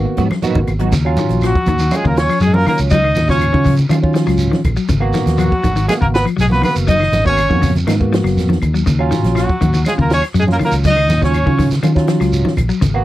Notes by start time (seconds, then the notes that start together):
Already playing: D#3 A#3 B3 F#4
0.05 muted clean electric guitar stroke
0.17 G#2 F3 F#3 B3 F#4, muted clean electric guitar stroke, kick, closed hi-hat, high conga, shekere
0.30 F#3, muted clean electric guitar stroke, snare, high conga, claves
0.42 F#3 A#3 B3 D#4 F#4, muted fingered electric bass stroke, closed hi-hat, high conga, shekere
0.55 G#1 D#3, kick, low conga
0.67 G#1, muted clean electric guitar stroke, closed hi-hat, low conga, claves, shekere
0.79 F#3 B3 D#4 F#4, closed hi-hat, low conga
0.92 D#2 C#3, kick, snare, closed hi-hat, low conga, shekere
1.05 F#3 C#4 F4, claves
1.17 D#3, closed hi-hat, high conga, shekere
1.29 A#1, closed hi-hat, high conga, shekere
1.41 F3, snare, closed hi-hat, claves, shekere
1.46 F#3 F#4
1.55 kick
1.66 D#2 D#3, kick, closed hi-hat, high conga, shekere
1.79 D#3, closed hi-hat, shekere
1.91 F#3 C#4 F4, closed hi-hat, high conga, claves, shekere
1.96 G#3 G#4
2.04 D#2 C#3 A#4, kick
2.09 A#3
2.16 C#5, snare, closed hi-hat, shekere
2.21 C#4
2.28 F3, snare, closed hi-hat, claves, shekere
2.40 F#2 F#3 G#4, closed hi-hat, shekere
2.46 G#3
2.53 F#3 C#4 F4 A#4, high conga
2.58 A#3
2.66 D#3 A#3 A#4, open hi-hat, high conga, low conga, claves, shekere
2.78 C#2, closed hi-hat, shekere
2.90 F#3 D#4 D#5, kick, closed hi-hat, low conga, shekere
3.04 D#3, claves
3.15 D#2, snare, closed hi-hat, high conga, shekere
3.27 C#3 F#3 C#4 F4 C#5, kick, snare, shekere
3.39 closed hi-hat, claves, shekere
3.52 C#3 D#3 F#3 C#4 F4, kick
3.64 C#3, kick, open hi-hat, high conga, shekere
3.77 closed hi-hat, low conga, shekere
3.89 D#3 F#3 C#4 F4, closed hi-hat, high conga, claves, shekere
4.02 F#3 C#4 F4, kick
4.14 F3, snare, closed hi-hat, shekere
4.26 C#2 F#3, snare, closed hi-hat, claves, shekere
4.38 closed hi-hat, shekere
4.52 D#3, snare, high conga
4.64 A#1, kick, closed hi-hat, low conga, claves, shekere
4.76 F#3, shekere
4.88 G#1 C#3, kick, closed hi-hat, low conga, shekere
5.00 A#3 B3 F#4, claves
5.13 D#3, snare, closed hi-hat, high conga, shekere
5.26 D#2, snare, closed hi-hat, high conga, shekere
5.37 F3 F#3 F#4, closed hi-hat, claves, shekere
5.52 kick
5.63 G#1 D#3, kick, closed hi-hat, high conga, shekere
5.76 D#3, closed hi-hat, shekere
5.88 G#3 A#3 B3 F#4 G#4, snare, closed hi-hat, high conga, claves, shekere
6.01 G#1 C#3 A#3 A#4, kick
6.14 B3 B4, snare, closed hi-hat, shekere
6.25 F3, closed hi-hat, claves, shekere
6.37 B1 F#3, snare, closed hi-hat, shekere
6.41 G#3 G#4
6.49 A#3 B3 F#4 B4, snare, high conga
6.54 B3
6.62 D#3 B3 B4, open hi-hat, high conga, low conga, claves, shekere
6.75 F#1, closed hi-hat, shekere
6.87 F#3 D#4 D#5, kick, closed hi-hat, low conga, shekere
7.00 D#3, snare, claves
7.12 G#1, snare, closed hi-hat, high conga, shekere
7.24 A#3 B3 F#4 C#5, muted clean electric guitar stroke, kick, shekere
7.29 C#4
7.37 closed hi-hat, claves, shekere
7.49 F2 D#3 A#3 B3 F#4, kick
7.62 C#3, kick, open hi-hat, high conga, shekere
7.76 closed hi-hat, low conga, shekere
7.87 G#2 D#3 A#3 B3 D#4, snare, closed hi-hat, high conga, claves, shekere
8.00 A#3 B3 F#4, kick
8.13 F3, snare, closed hi-hat, shekere
8.24 F#1 F#3, snare, closed hi-hat, claves, shekere
8.36 F2, snare, closed hi-hat, shekere
8.49 D#3, snare, high conga
8.62 D#2, kick, closed hi-hat, low conga, claves, shekere
8.74 F#3, shekere
8.86 D#2 C#3, kick, closed hi-hat, low conga, shekere
8.99 F#3 C#4 F4, claves
9.11 D#3, snare, closed hi-hat, high conga, shekere
9.23 A#1, snare, closed hi-hat, high conga, shekere
9.35 F3 F#3 F#4, snare, closed hi-hat, claves, shekere
9.49 kick
9.61 D#2 D#3, kick, closed hi-hat, high conga, shekere
9.74 D#3, closed hi-hat, low conga, shekere
9.85 F#3 G#3 C#4 F4 G#4, snare, closed hi-hat, high conga, claves, shekere
9.98 D#2 C#3 A#3 A#4, kick
10.10 C#4, snare, closed hi-hat, shekere
10.14 C#5
10.22 snare, closed hi-hat, claves, shekere
10.34 F#2 F#3, closed hi-hat, shekere
10.39 G#3 G#4
10.47 F#3 C#4 F4, snare, high conga
10.52 A#3 A#4
10.59 D#3, open hi-hat, high conga, low conga, claves, shekere
10.65 A#3 A#4
10.72 C#2, closed hi-hat, shekere
10.84 F#3 D#5, kick, closed hi-hat, low conga, shekere
10.90 D#4
10.97 D#3, claves
11.08 D#2, snare, closed hi-hat, high conga, shekere
11.21 C#3 F#3 C#4 F4 C#5, kick, snare, shekere
11.34 closed hi-hat, claves, shekere
11.46 C#3 D#3 F#3 C#4 F4, kick
11.58 D#3, kick, open hi-hat, high conga, shekere
11.71 snare, closed hi-hat, low conga, shekere
11.83 D#3 F#3 C#4 F4, closed hi-hat, high conga, claves, shekere
11.95 F#3 C#4 F4, kick, snare
12.07 F3, snare, closed hi-hat, shekere
12.20 C#2 F#3, snare, closed hi-hat, claves, shekere
12.33 closed hi-hat, shekere
12.45 D#3, snare, high conga
12.57 A#1, kick, closed hi-hat, low conga, claves, shekere
12.69 F#3, shekere
12.81 G#1 C#3, kick, closed hi-hat, low conga, shekere
12.94 A#3 B3 F#4, claves